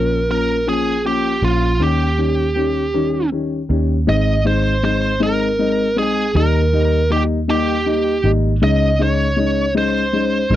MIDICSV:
0, 0, Header, 1, 4, 480
1, 0, Start_track
1, 0, Key_signature, -4, "major"
1, 0, Tempo, 756620
1, 1147, Time_signature, 6, 3, 24, 8
1, 6700, End_track
2, 0, Start_track
2, 0, Title_t, "Lead electric guitar"
2, 0, Program_c, 0, 29
2, 0, Note_on_c, 0, 70, 83
2, 191, Note_off_c, 0, 70, 0
2, 199, Note_on_c, 0, 70, 91
2, 434, Note_off_c, 0, 70, 0
2, 436, Note_on_c, 0, 68, 76
2, 674, Note_off_c, 0, 68, 0
2, 676, Note_on_c, 0, 67, 72
2, 917, Note_on_c, 0, 65, 80
2, 919, Note_off_c, 0, 67, 0
2, 1157, Note_on_c, 0, 67, 73
2, 1159, Note_off_c, 0, 65, 0
2, 2088, Note_off_c, 0, 67, 0
2, 2595, Note_on_c, 0, 75, 103
2, 2816, Note_off_c, 0, 75, 0
2, 2835, Note_on_c, 0, 72, 93
2, 3068, Note_off_c, 0, 72, 0
2, 3076, Note_on_c, 0, 72, 103
2, 3296, Note_off_c, 0, 72, 0
2, 3319, Note_on_c, 0, 70, 96
2, 3794, Note_off_c, 0, 70, 0
2, 3796, Note_on_c, 0, 68, 95
2, 4036, Note_off_c, 0, 68, 0
2, 4038, Note_on_c, 0, 70, 98
2, 4513, Note_off_c, 0, 70, 0
2, 4516, Note_on_c, 0, 67, 104
2, 4580, Note_off_c, 0, 67, 0
2, 4761, Note_on_c, 0, 67, 84
2, 5270, Note_off_c, 0, 67, 0
2, 5480, Note_on_c, 0, 75, 112
2, 5721, Note_off_c, 0, 75, 0
2, 5725, Note_on_c, 0, 73, 101
2, 6172, Note_off_c, 0, 73, 0
2, 6203, Note_on_c, 0, 72, 101
2, 6690, Note_off_c, 0, 72, 0
2, 6700, End_track
3, 0, Start_track
3, 0, Title_t, "Upright piano"
3, 0, Program_c, 1, 0
3, 0, Note_on_c, 1, 53, 69
3, 0, Note_on_c, 1, 58, 61
3, 0, Note_on_c, 1, 61, 76
3, 108, Note_off_c, 1, 53, 0
3, 108, Note_off_c, 1, 58, 0
3, 109, Note_off_c, 1, 61, 0
3, 183, Note_on_c, 1, 53, 69
3, 185, Note_on_c, 1, 58, 58
3, 187, Note_on_c, 1, 61, 65
3, 350, Note_off_c, 1, 53, 0
3, 351, Note_off_c, 1, 58, 0
3, 352, Note_off_c, 1, 61, 0
3, 421, Note_on_c, 1, 53, 82
3, 424, Note_on_c, 1, 58, 69
3, 424, Note_on_c, 1, 61, 86
3, 589, Note_off_c, 1, 53, 0
3, 591, Note_off_c, 1, 58, 0
3, 591, Note_off_c, 1, 61, 0
3, 664, Note_on_c, 1, 53, 69
3, 665, Note_on_c, 1, 58, 67
3, 666, Note_on_c, 1, 61, 77
3, 831, Note_off_c, 1, 53, 0
3, 831, Note_off_c, 1, 58, 0
3, 832, Note_off_c, 1, 61, 0
3, 900, Note_on_c, 1, 53, 60
3, 901, Note_on_c, 1, 58, 63
3, 901, Note_on_c, 1, 61, 66
3, 1069, Note_off_c, 1, 53, 0
3, 1070, Note_off_c, 1, 58, 0
3, 1070, Note_off_c, 1, 61, 0
3, 1139, Note_on_c, 1, 51, 81
3, 1142, Note_on_c, 1, 55, 70
3, 1142, Note_on_c, 1, 61, 86
3, 1309, Note_off_c, 1, 51, 0
3, 1310, Note_off_c, 1, 55, 0
3, 1310, Note_off_c, 1, 61, 0
3, 1382, Note_on_c, 1, 51, 62
3, 1384, Note_on_c, 1, 55, 63
3, 1385, Note_on_c, 1, 61, 77
3, 1550, Note_off_c, 1, 51, 0
3, 1551, Note_off_c, 1, 55, 0
3, 1552, Note_off_c, 1, 61, 0
3, 1621, Note_on_c, 1, 51, 70
3, 1623, Note_on_c, 1, 55, 64
3, 1625, Note_on_c, 1, 61, 76
3, 1790, Note_off_c, 1, 51, 0
3, 1791, Note_off_c, 1, 55, 0
3, 1792, Note_off_c, 1, 61, 0
3, 1865, Note_on_c, 1, 51, 87
3, 1866, Note_on_c, 1, 55, 71
3, 1869, Note_on_c, 1, 61, 85
3, 2032, Note_off_c, 1, 51, 0
3, 2033, Note_off_c, 1, 55, 0
3, 2034, Note_off_c, 1, 61, 0
3, 2104, Note_on_c, 1, 55, 55
3, 2105, Note_on_c, 1, 51, 65
3, 2108, Note_on_c, 1, 61, 73
3, 2272, Note_off_c, 1, 51, 0
3, 2272, Note_off_c, 1, 55, 0
3, 2274, Note_off_c, 1, 61, 0
3, 2341, Note_on_c, 1, 51, 72
3, 2345, Note_on_c, 1, 61, 74
3, 2346, Note_on_c, 1, 55, 64
3, 2510, Note_off_c, 1, 51, 0
3, 2512, Note_off_c, 1, 61, 0
3, 2513, Note_off_c, 1, 55, 0
3, 2582, Note_on_c, 1, 56, 84
3, 2584, Note_on_c, 1, 60, 77
3, 2586, Note_on_c, 1, 63, 96
3, 2751, Note_off_c, 1, 56, 0
3, 2752, Note_off_c, 1, 60, 0
3, 2753, Note_off_c, 1, 63, 0
3, 2822, Note_on_c, 1, 56, 79
3, 2823, Note_on_c, 1, 60, 62
3, 2827, Note_on_c, 1, 63, 84
3, 2991, Note_off_c, 1, 56, 0
3, 2992, Note_off_c, 1, 60, 0
3, 2993, Note_off_c, 1, 63, 0
3, 3065, Note_on_c, 1, 56, 75
3, 3068, Note_on_c, 1, 60, 62
3, 3071, Note_on_c, 1, 63, 79
3, 3233, Note_off_c, 1, 56, 0
3, 3234, Note_off_c, 1, 60, 0
3, 3235, Note_off_c, 1, 63, 0
3, 3299, Note_on_c, 1, 56, 92
3, 3302, Note_on_c, 1, 60, 80
3, 3305, Note_on_c, 1, 63, 93
3, 3469, Note_off_c, 1, 56, 0
3, 3471, Note_off_c, 1, 60, 0
3, 3473, Note_off_c, 1, 63, 0
3, 3546, Note_on_c, 1, 56, 73
3, 3547, Note_on_c, 1, 60, 61
3, 3549, Note_on_c, 1, 63, 84
3, 3713, Note_off_c, 1, 56, 0
3, 3714, Note_off_c, 1, 60, 0
3, 3714, Note_off_c, 1, 63, 0
3, 3783, Note_on_c, 1, 56, 71
3, 3786, Note_on_c, 1, 60, 67
3, 3789, Note_on_c, 1, 63, 76
3, 3951, Note_off_c, 1, 56, 0
3, 3953, Note_off_c, 1, 60, 0
3, 3954, Note_off_c, 1, 63, 0
3, 4026, Note_on_c, 1, 55, 88
3, 4029, Note_on_c, 1, 58, 76
3, 4033, Note_on_c, 1, 63, 94
3, 4193, Note_off_c, 1, 55, 0
3, 4195, Note_off_c, 1, 58, 0
3, 4196, Note_off_c, 1, 63, 0
3, 4269, Note_on_c, 1, 55, 75
3, 4270, Note_on_c, 1, 58, 70
3, 4274, Note_on_c, 1, 63, 85
3, 4435, Note_off_c, 1, 55, 0
3, 4435, Note_off_c, 1, 58, 0
3, 4437, Note_off_c, 1, 63, 0
3, 4504, Note_on_c, 1, 55, 69
3, 4508, Note_on_c, 1, 58, 66
3, 4508, Note_on_c, 1, 63, 81
3, 4672, Note_off_c, 1, 55, 0
3, 4674, Note_off_c, 1, 58, 0
3, 4674, Note_off_c, 1, 63, 0
3, 4745, Note_on_c, 1, 55, 83
3, 4748, Note_on_c, 1, 58, 77
3, 4748, Note_on_c, 1, 63, 97
3, 4912, Note_off_c, 1, 55, 0
3, 4914, Note_off_c, 1, 58, 0
3, 4914, Note_off_c, 1, 63, 0
3, 4986, Note_on_c, 1, 55, 68
3, 4988, Note_on_c, 1, 58, 65
3, 4990, Note_on_c, 1, 63, 88
3, 5153, Note_off_c, 1, 55, 0
3, 5154, Note_off_c, 1, 58, 0
3, 5155, Note_off_c, 1, 63, 0
3, 5226, Note_on_c, 1, 55, 80
3, 5228, Note_on_c, 1, 58, 63
3, 5230, Note_on_c, 1, 63, 74
3, 5393, Note_off_c, 1, 55, 0
3, 5394, Note_off_c, 1, 58, 0
3, 5395, Note_off_c, 1, 63, 0
3, 5466, Note_on_c, 1, 56, 94
3, 5469, Note_on_c, 1, 61, 82
3, 5470, Note_on_c, 1, 63, 96
3, 5633, Note_off_c, 1, 56, 0
3, 5635, Note_off_c, 1, 61, 0
3, 5635, Note_off_c, 1, 63, 0
3, 5705, Note_on_c, 1, 56, 80
3, 5707, Note_on_c, 1, 61, 73
3, 5710, Note_on_c, 1, 63, 81
3, 5872, Note_off_c, 1, 56, 0
3, 5873, Note_off_c, 1, 61, 0
3, 5875, Note_off_c, 1, 63, 0
3, 5941, Note_on_c, 1, 56, 74
3, 5945, Note_on_c, 1, 61, 64
3, 5947, Note_on_c, 1, 63, 78
3, 6110, Note_off_c, 1, 56, 0
3, 6112, Note_off_c, 1, 61, 0
3, 6113, Note_off_c, 1, 63, 0
3, 6183, Note_on_c, 1, 56, 84
3, 6186, Note_on_c, 1, 61, 75
3, 6187, Note_on_c, 1, 63, 91
3, 6351, Note_off_c, 1, 56, 0
3, 6353, Note_off_c, 1, 61, 0
3, 6353, Note_off_c, 1, 63, 0
3, 6427, Note_on_c, 1, 56, 78
3, 6430, Note_on_c, 1, 61, 69
3, 6431, Note_on_c, 1, 63, 76
3, 6593, Note_off_c, 1, 56, 0
3, 6595, Note_off_c, 1, 61, 0
3, 6595, Note_off_c, 1, 63, 0
3, 6666, Note_on_c, 1, 56, 71
3, 6667, Note_on_c, 1, 61, 69
3, 6668, Note_on_c, 1, 63, 72
3, 6700, Note_off_c, 1, 56, 0
3, 6700, Note_off_c, 1, 61, 0
3, 6700, Note_off_c, 1, 63, 0
3, 6700, End_track
4, 0, Start_track
4, 0, Title_t, "Fingered electric bass"
4, 0, Program_c, 2, 33
4, 0, Note_on_c, 2, 34, 83
4, 878, Note_off_c, 2, 34, 0
4, 902, Note_on_c, 2, 34, 89
4, 1130, Note_off_c, 2, 34, 0
4, 1141, Note_on_c, 2, 39, 95
4, 2320, Note_off_c, 2, 39, 0
4, 2346, Note_on_c, 2, 39, 88
4, 2573, Note_off_c, 2, 39, 0
4, 2586, Note_on_c, 2, 32, 91
4, 3785, Note_off_c, 2, 32, 0
4, 3785, Note_on_c, 2, 34, 83
4, 4013, Note_off_c, 2, 34, 0
4, 4027, Note_on_c, 2, 39, 101
4, 5203, Note_off_c, 2, 39, 0
4, 5225, Note_on_c, 2, 32, 89
4, 5453, Note_off_c, 2, 32, 0
4, 5467, Note_on_c, 2, 37, 84
4, 6642, Note_off_c, 2, 37, 0
4, 6664, Note_on_c, 2, 34, 109
4, 6700, Note_off_c, 2, 34, 0
4, 6700, End_track
0, 0, End_of_file